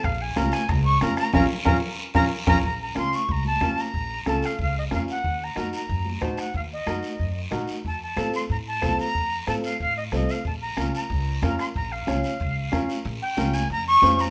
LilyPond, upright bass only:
\new Staff \with { instrumentName = "Upright bass" } { \clef bass \time 4/4 \key bes \minor \tempo 4 = 184 bes,,4 des,8 r8 des,4 f,8 r8 | bes,,8 r8 bes,,8 r4 bes,,8 r8 bes,,8 | bes,,4 des,8 r8 des,4 f,8 r8 | bes,,4 des,8 r8 des,4 f,8 r8 |
ees,4 ges,8 r8 ges,4 bes,,8 r8 | ees,4 ges,8 r8 ges,4 bes,,8 r8 | f,4 a,8 r8 a,4 c,8 r8 | f,4 a,8 r8 a,4 c,8 r8 |
bes,,4 des,8 r8 des,4 f,8 r8 | bes,,4 des,8 r8 des,4 f,8 r8 | \key bes \dorian bes,,8 r8 des,4 f,4 f,4 | }